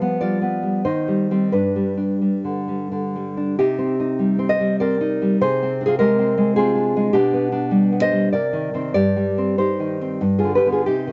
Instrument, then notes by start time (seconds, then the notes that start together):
nylon-string guitar
Already playing: F3 G3 B4 F5
0.02 B3
0.21 G3 F4 D5
0.42 B3
0.63 G3
0.85 D#3 D#4 C5
1.08 G3
1.31 G3 C4
1.52 G2 D4 B4
1.76 G3
1.97 D4
2.21 G3
2.44 D3
2.68 G3
2.92 D3
3.16 G3
3.37 D4
3.59 C3 D#4 G4
3.78 C4
4.00 D#4
4.19 G3
4.39 C4
4.49 C5 D#5
4.60 G3
4.80 C4 A#4 D5
5.01 D#4
5.22 G3
5.41 C3 G#4 C5
5.63 C4
5.81 D4
5.86 F4 G#4
5.99 G#3 G4 A#4
6.19 C4
6.38 G#3
6.56 C4 F4 G#4
6.75 D4
6.96 G#3
7.13 B2 D4 G4
7.33 B3
7.52 D4
7.71 G3
7.92 B3
8.02 C5 D#5
8.12 G3
8.33 C3 A#4 D5
8.53 D#3
8.74 D#3 C4
8.94 G2 G4 D5
9.16 G3
9.38 C4
9.58 D#4 G4 C5
9.80 D#3
10.01 C4
10.21 G2
10.39 F4 G#4
10.44 D3
10.55 G4 B4
10.66 D3 B3
10.72 F4 G#4
10.86 C3 D#4 G4
11.07 D#3